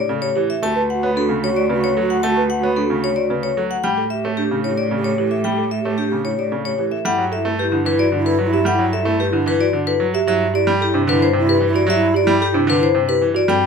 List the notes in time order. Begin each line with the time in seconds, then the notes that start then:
Already playing: A2 G4 D5
0.09 C#3 A4
0.22 G4 C#5
0.36 E3 G4
0.50 E5
0.62 D2 A3 F#4 A5
0.76 B4
0.90 F#4 F#5
1.03 B3 C#5
1.16 D4 F#4 A4
1.29 C#3
1.44 F#4 C#5
1.56 D5
1.70 C#3 B4
1.74 F#4
1.84 C#5
1.97 F#3 A4
2.02 F#4
2.10 F#5
2.23 A3 A5
2.30 F#4
2.37 B4
2.50 F#5
2.59 F#4
2.63 B3 C#5
2.76 D4 A4
2.86 F#4
2.90 C#3
3.04 F#4 C#5
3.15 F#4 D5
3.30 C#3 B4
3.43 F#4 C#5
3.57 F#3 A4
3.71 F#5
3.84 A2 G3 G4 G5
3.98 A4
4.10 G4 E5
4.24 A3 C#5
4.37 D4 G4
4.51 C#3
4.64 E4 C#5
4.68 G4
4.78 D5
4.91 C#3 A4
4.96 G4
5.04 C#5
5.18 E3 G4
5.24 G4
5.31 A4 E5
5.44 G3 G5
5.52 G4
5.58 A4
5.71 E5
5.80 G4
5.85 A3 C#5
5.98 D4 G4
6.08 C#3 G4
6.25 E4 C#5
6.37 G4 D5
6.52 C#3 A4
6.65 G4 C#5
6.78 E3 G4
6.92 A4 E5
7.05 G2 G3 E4 A4 F#5
7.18 F#3
7.32 E4 A4 E5
7.45 A3
7.59 E4 G4 B4
7.72 D3 E4
7.85 E3 B4
7.90 E4
7.99 F#4 D5
8.12 D3
8.18 E4
8.26 A4 B4
8.39 F#3
8.45 E4
8.53 G4 E5
8.65 G3 F#5
8.73 E4
8.79 F#3
8.93 A4 E5
9.02 A3 E4
9.20 G4 B4
9.30 D3 E4
9.46 E3 B4
9.58 E4 F#4 D5
9.73 D3
9.86 E4 A4 B4
10.00 F#3
10.14 G4 E5
10.27 G2 F#3 E4 G4 E5
10.54 E4 G4 D5
10.67 G3
10.81 E4 G4 A4
10.94 C3 D4
11.07 D3 E4 B4
11.21 E4 C5
11.33 C3
11.39 E4
11.47 G4 B4
11.60 E3
11.67 E4
11.74 F#4 D5
11.87 F#3 G4 E5
11.95 E4
12.14 G4 D5
12.23 E4
12.27 G3
12.41 G4 A4
12.51 C3 D4 E4
12.67 D3 B4
12.79 E4
12.83 C5
12.95 C3
13.08 E4 G4 B4
13.21 E3
13.35 F#4 D5
13.48 G2 G3 C4 A4 G5